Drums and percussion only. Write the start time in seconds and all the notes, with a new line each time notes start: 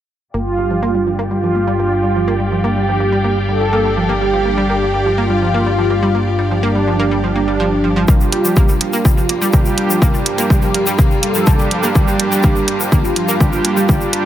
8.08 kick, mid tom, shaker
8.21 shaker
8.32 closed hi-hat
8.45 shaker
8.56 kick, mid tom, shaker
8.68 shaker
8.81 closed hi-hat
8.93 shaker
9.05 kick, mid tom, shaker
9.18 shaker
9.29 closed hi-hat
9.42 shaker
9.53 kick, mid tom, shaker
9.65 shaker
9.78 closed hi-hat
9.90 shaker
10.02 kick, mid tom, shaker
10.14 shaker
10.26 closed hi-hat
10.38 closed hi-hat, shaker
10.50 kick, mid tom, shaker
10.62 shaker
10.74 closed hi-hat
10.86 shaker
10.99 kick, mid tom, shaker
11.11 shaker
11.23 closed hi-hat
11.34 shaker
11.46 kick, mid tom, shaker
11.59 shaker
11.71 closed hi-hat
11.83 shaker
11.95 kick, mid tom, shaker
12.08 shaker
12.20 closed hi-hat
12.32 shaker
12.43 kick, mid tom, shaker
12.56 shaker
12.68 closed hi-hat
12.80 shaker
12.92 kick, mid tom, shaker
13.05 shaker
13.16 closed hi-hat
13.28 shaker
13.40 kick, mid tom, shaker
13.53 shaker
13.65 closed hi-hat
13.77 shaker
13.89 kick, mid tom, shaker
14.01 shaker
14.13 closed hi-hat